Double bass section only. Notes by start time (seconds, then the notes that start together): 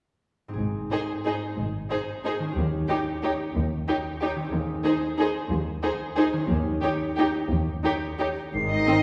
0.57 G#1
1.58 G#1
2.57 D#2
3.55 D#2
4.54 D#2
5.51 D#2
6.50 D#2
7.50 D#2
8.54 G#1